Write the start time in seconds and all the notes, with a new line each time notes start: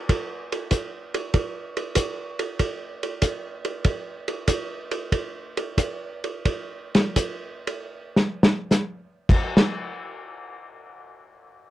0.09 kick, ride
0.52 ride
0.71 kick, hi-hat pedal, ride
1.14 ride
1.34 kick, ride
1.77 ride
1.95 kick, hi-hat pedal, ride
2.39 ride
2.59 kick, ride
3.03 ride
3.22 kick, hi-hat pedal, ride
3.65 ride
3.84 kick, ride
4.28 ride
4.48 kick, hi-hat pedal, ride
4.91 ride
5.12 kick, ride
5.57 ride
5.78 kick, hi-hat pedal, ride
6.24 ride
6.45 kick, ride
6.95 snare, ride
7.16 kick, hi-hat pedal, ride
7.67 ride
8.16 snare
8.43 snare
8.71 snare, hi-hat pedal
9.29 kick, crash
9.57 snare